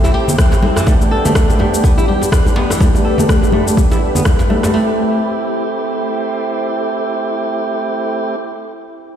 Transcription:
Already playing: tonewheel organ A3 C4 E4 G4, ambient pad G4 C5 E5 A5
0.04 nylon-string guitar E4, muted conga, djembe slap, djembe tone, shaker
0.14 nylon-string guitar G4
0.28 djembe tone, low conga, shaker
0.38 tonewheel organ A3 C4 E4 G4, kick, cross-stick, high conga, shaker
0.52 djembe slap, muted conga, djembe tone, shaker
0.63 nylon-string guitar C4, high conga
0.76 nylon-string guitar E3, cross-stick, djembe slap, djembe tone, djembe bass, shaker
0.87 tonewheel organ G3 B3 D4 G4, nylon-string guitar A3, ambient pad A3 B4 D5 B5, kick, djembe slap, muted conga, high conga, shaker
1.01 djembe tone, shaker
1.11 nylon-string guitar A4
1.25 nylon-string guitar A3, muted conga, djembe tone, low conga, shaker
1.35 nylon-string guitar A3, kick, cross-stick, shaker
1.50 djembe tone, shaker
1.59 nylon-string guitar A3, muted conga, high conga, djembe bass
1.74 djembe tone, shaker
1.83 nylon-string guitar B3, kick, high conga, shaker
1.98 nylon-string guitar E4, muted conga, djembe tone, shaker
2.08 nylon-string guitar G4, high conga
2.22 djembe tone, shaker
2.32 tonewheel organ G3 B3 D4 G4, kick, cross-stick, djembe bass, shaker
2.45 muted conga, djembe tone, high conga, shaker
2.56 nylon-string guitar B3, djembe slap
2.70 nylon-string guitar E3, cross-stick, djembe tone, shaker
2.80 tonewheel organ G3 B3 D4 G4, nylon-string guitar A3, ambient pad E5, kick, muted conga, djembe slap, high conga, shaker
2.95 djembe tone, shaker
3.05 nylon-string guitar A4
3.18 nylon-string guitar A3, muted conga, djembe tone, low conga, shaker
3.29 nylon-string guitar A3, kick, cross-stick, high conga, shaker
3.43 djembe tone, shaker
3.52 nylon-string guitar A3, muted conga, high conga, djembe bass
3.67 djembe tone, shaker
3.77 nylon-string guitar B3, kick, high conga, shaker
3.91 nylon-string guitar E4, muted conga, djembe slap, djembe tone, shaker
4.15 nylon-string guitar B3, djembe tone, low conga, shaker
4.25 kick, cross-stick, high conga, shaker
4.39 djembe slap, muted conga, djembe tone, shaker
4.50 tonewheel organ G3 B3 D4 G4, nylon-string guitar A3, high conga
4.63 nylon-string guitar A3, cross-stick, djembe slap, djembe tone, djembe bass, shaker
4.73 nylon-string guitar A3, tonewheel organ A3 C4 E4 G4, ambient pad E4 A4 C5 G5

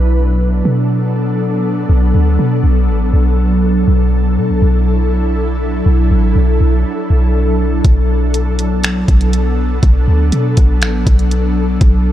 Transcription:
Already playing: 808-style bass B1, ambient pad F#3 B3 D4 A4
0.65 808-style bass B2
1.89 808-style bass B1
2.14 808-style bass D2
2.39 808-style bass B2
2.64 808-style bass B1
2.89 808-style bass A1
3.13 808-style bass B1
3.88 808-style bass B1, ambient pad D4 E4
4.37 808-style bass B2
4.50 808-style bass B1
4.62 808-style bass B1
5.86 808-style bass B1
6.11 808-style bass A1
6.36 808-style bass B1
6.60 808-style bass B1
7.10 808-style bass B1
7.84 808-style bass B1, ambient pad B3, kick, closed hi-hat
8.34 closed hi-hat
8.59 closed hi-hat
8.83 finger snap, closed hi-hat
9.08 808-style bass B1, kick, closed hi-hat
9.21 closed hi-hat
9.33 closed hi-hat
9.83 808-style bass B1, kick, closed hi-hat
10.08 808-style bass D2
10.32 808-style bass B2, closed hi-hat
10.57 808-style bass B1, kick, closed hi-hat
10.82 808-style bass A1, finger snap, closed hi-hat
11.07 808-style bass B1, kick, closed hi-hat
11.19 closed hi-hat
11.31 closed hi-hat
11.81 808-style bass B1, ambient pad F#3 E4 A4, kick, closed hi-hat

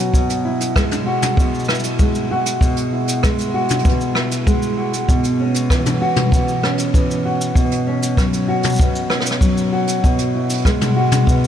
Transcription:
Already playing: nylon-string guitar B2 F#3 C#4 F#4
0.14 nylon-string guitar B2, kick, cabasa
0.30 closed hi-hat, cabasa
0.45 nylon-string guitar E4
0.60 closed hi-hat, cabasa
0.76 nylon-string guitar G#3, kick, cross-stick, cabasa
0.91 closed hi-hat, mid tom, cabasa
1.06 nylon-string guitar F#4
1.22 closed hi-hat, mid tom, cabasa
1.37 nylon-string guitar B2, kick, cabasa
1.54 cabasa
1.59 cabasa
1.64 cabasa
1.69 nylon-string guitar E4, cross-stick, cabasa
1.75 cabasa
1.79 cabasa
1.83 closed hi-hat, cabasa
1.99 nylon-string guitar G#3, kick, cabasa
2.15 cabasa
2.31 nylon-string guitar F#4
2.46 closed hi-hat, cabasa
2.61 nylon-string guitar B2, kick, cabasa
2.77 closed hi-hat, cabasa
2.92 nylon-string guitar E4
3.08 closed hi-hat, cabasa
3.23 nylon-string guitar G#3, kick, cross-stick, cabasa
3.38 closed hi-hat, cabasa
3.54 nylon-string guitar F#4
3.69 closed hi-hat, mid tom, cabasa
3.79 closed hi-hat
3.85 nylon-string guitar B2, kick, closed hi-hat, cabasa
4.01 cabasa
4.15 nylon-string guitar E4, cross-stick
4.31 closed hi-hat, cabasa
4.47 nylon-string guitar G#3, kick, cabasa
4.62 cabasa
4.77 nylon-string guitar F#4
4.93 closed hi-hat, cabasa
5.09 nylon-string guitar B2, kick, cabasa
5.24 closed hi-hat, cabasa
5.40 nylon-string guitar C#4
5.54 closed hi-hat, cabasa
5.70 nylon-string guitar E3, kick, cross-stick, cabasa
5.86 closed hi-hat, mid tom, cabasa
6.02 nylon-string guitar F#4
6.16 closed hi-hat, mid tom
6.32 nylon-string guitar B2, kick, cabasa
6.48 cabasa
6.63 nylon-string guitar C#4, cross-stick
6.78 closed hi-hat, cabasa
6.94 nylon-string guitar E3, kick, cabasa
7.11 cabasa
7.25 nylon-string guitar F#4
7.41 cabasa
7.55 nylon-string guitar B2, kick, cabasa
7.71 closed hi-hat
7.87 nylon-string guitar C#4
8.02 closed hi-hat, cabasa
8.17 nylon-string guitar F#3, kick, cross-stick, cabasa
8.33 closed hi-hat, cabasa
8.48 nylon-string guitar F#4
8.63 closed hi-hat, mid tom, cabasa
8.67 cabasa
8.70 cabasa
8.72 cabasa
8.74 cabasa
8.76 cabasa
8.78 nylon-string guitar B2, kick, cabasa
8.81 cabasa
8.95 cabasa
9.10 nylon-string guitar C#4, cross-stick
9.20 cross-stick
9.25 closed hi-hat, cabasa
9.31 cross-stick
9.41 nylon-string guitar F#3, kick, cabasa
9.57 cabasa
9.73 nylon-string guitar F#4
9.87 closed hi-hat, cabasa
10.03 nylon-string guitar B2, kick, cabasa
10.18 closed hi-hat, cabasa
10.35 nylon-string guitar E4
10.50 closed hi-hat, cabasa
10.53 closed hi-hat
10.57 closed hi-hat
10.62 nylon-string guitar G#3, kick, cross-stick, closed hi-hat
10.67 cabasa
10.81 closed hi-hat, mid tom, cabasa
10.96 nylon-string guitar F#4
11.11 closed hi-hat, mid tom, cabasa
11.27 nylon-string guitar B2, kick, cabasa

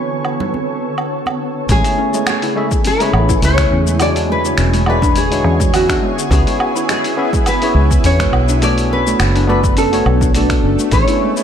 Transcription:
Already playing: ambient pad D3 B3 A4 C#5, tine electric piano B3 D4 F#4 A4 C#5, nylon-string guitar B4
0.25 low woodblock
0.40 low conga
0.54 high conga
0.98 low woodblock
1.26 high conga, low woodblock
1.69 fingered electric bass A1, ambient pad C#3 A3 E4 G#4, synth pluck G#3, tine electric piano A3 C#4 E4 G#4 C#5, nylon-string guitar G#4, kick, open hi-hat, shaker
1.84 open hi-hat, shaker
1.98 synth pluck C#4
2.13 synth pluck G#3, tine electric piano A3 C#4 E4 G#4 C#5, shaker
2.27 nylon-string guitar G#4, finger snap, open hi-hat, low woodblock, shaker
2.42 synth pluck E4, open hi-hat, shaker
2.55 synth pluck G#3, tine electric piano A3 C#4 E4 G#4 E5
2.71 kick, shaker
2.85 synth pluck C#4, nylon-string guitar B4, open hi-hat, shaker
3.00 synth pluck G#3, tine electric piano A3 C#4 E4 G#4 C#5, open hi-hat, shaker
3.13 fingered electric bass A1, low woodblock
3.29 synth pluck E4, kick, shaker
3.42 fingered electric bass C#2, synth pluck G#3, tine electric piano A3 C#4 E4 G#4 E5, nylon-string guitar C#5, open hi-hat, shaker
3.58 finger snap, kick, open hi-hat, shaker
3.71 fingered electric bass E2, synth pluck C#4
3.87 synth pluck G#3, shaker
4.00 ambient pad D3 F#4 C#5, tine electric piano G#3 D4 E4 F#4 C#5, nylon-string guitar D5, open hi-hat, low woodblock, shaker
4.16 synth pluck D4, open hi-hat, shaker
4.29 synth pluck G#3, nylon-string guitar B4
4.44 tine electric piano G#3 D4 E4 F#4 C#5, shaker
4.58 fingered electric bass E1, synth pluck C#4, finger snap, open hi-hat, shaker
4.74 synth pluck G#3, open hi-hat, shaker
4.86 tine electric piano G#3 D4 E4 F#4 D5, nylon-string guitar B4, low woodblock
5.02 synth pluck D4, kick, shaker
5.15 synth pluck G#3, nylon-string guitar G#4, open hi-hat, shaker
5.30 tine electric piano G#3 D4 E4 F#4 C#5, open hi-hat, shaker
5.44 fingered electric bass E2, synth pluck C#4
5.60 synth pluck G#3, kick, shaker
5.73 tine electric piano B3 C#4 E4 G#4 E5, nylon-string guitar F#4, open hi-hat, low woodblock, shaker
5.89 synth pluck D4, finger snap, kick, open hi-hat, shaker
6.02 synth pluck G#3, ambient pad B3 E4
6.19 shaker
6.31 fingered electric bass C#2, tine electric piano B3 C#4 E4 G#4 C#5, synth pluck C#4, nylon-string guitar G#4, kick, open hi-hat, shaker
6.47 synth pluck G#3, open hi-hat, shaker
6.60 low woodblock
6.75 tine electric piano B3 C#4 E4 G#4 C#5, synth pluck E4, shaker
6.89 synth pluck G#3, nylon-string guitar G#4, finger snap, open hi-hat, shaker
7.04 open hi-hat, shaker
7.17 tine electric piano B3 C#4 E4 G#4 E5, synth pluck C#4
7.33 synth pluck G#3, kick, shaker
7.46 nylon-string guitar B4, open hi-hat, low woodblock, shaker
7.62 tine electric piano B3 C#4 E4 G#4 C#5, synth pluck E4, open hi-hat, shaker
7.74 fingered electric bass C#2, synth pluck G#3
7.91 kick, shaker
8.04 fingered electric bass E2, tine electric piano B3 D4 F#4 A4 C#5, synth pluck C#4, nylon-string guitar C#5, open hi-hat, shaker
8.20 synth pluck G#3, finger snap, kick, open hi-hat, shaker
8.32 fingered electric bass B1, ambient pad A3 B3 D4, low woodblock
8.49 synth pluck D4, shaker
8.62 synth pluck A3, tine electric piano B3 D4 F#4 A4 C#5, nylon-string guitar D5, open hi-hat, shaker
8.78 open hi-hat, shaker
8.91 synth pluck C#4, nylon-string guitar B4
9.06 synth pluck A3, tine electric piano B3 D4 F#4 A4 C#5, shaker
9.20 fingered electric bass F#1, finger snap, open hi-hat, low woodblock, shaker
9.36 synth pluck D4, open hi-hat, shaker
9.47 synth pluck A3, tine electric piano B3 D4 F#4 A4 D5, nylon-string guitar B4
9.64 kick, shaker
9.77 synth pluck C#4, nylon-string guitar A4, open hi-hat, shaker
9.92 synth pluck A3, tine electric piano B3 D4 F#4 A4 C#5, open hi-hat, shaker
10.06 fingered electric bass B1, low woodblock
10.21 synth pluck D4, kick, shaker
10.34 synth pluck A3, tine electric piano B3 D4 F#4 A4 D5, nylon-string guitar A4, open hi-hat, shaker
10.50 finger snap, kick, open hi-hat, shaker
10.63 fingered electric bass F#1, synth pluck C#4
10.79 synth pluck A3, shaker
10.91 fingered electric bass A1, tine electric piano A3 C#4 E4 G#4 C#5, ambient pad E4 G#5, nylon-string guitar C#5, kick, open hi-hat, shaker
11.08 synth pluck E4, open hi-hat, shaker
11.22 synth pluck G#3
11.36 tine electric piano A3 C#4 E4 G#4 C#5, shaker

